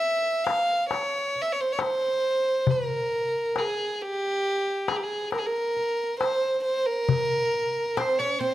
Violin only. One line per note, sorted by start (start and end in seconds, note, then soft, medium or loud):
0.00 0.46 E5 medium
0.44 0.89 F5 medium
0.90 1.43 C#5 medium
1.42 1.54 E5 medium
1.52 1.62 C#5 medium
1.61 1.74 C5 medium
1.72 1.82 C#5 medium
1.81 2.72 C5 medium
2.70 3.59 A#4 medium
3.58 4.03 G#4 medium
4.01 4.90 G4 medium
4.88 4.98 G#4 medium
4.96 5.05 G4 medium
5.03 5.32 G#4 medium
5.32 5.40 A#4 medium
5.39 5.47 G#4 medium
5.46 6.19 A#4 medium
6.20 6.61 C5 medium
6.64 6.88 C5 medium
6.86 7.98 A#4 loud
7.97 8.20 C5 medium
8.19 8.41 C#5 medium
8.39 8.54 C5 medium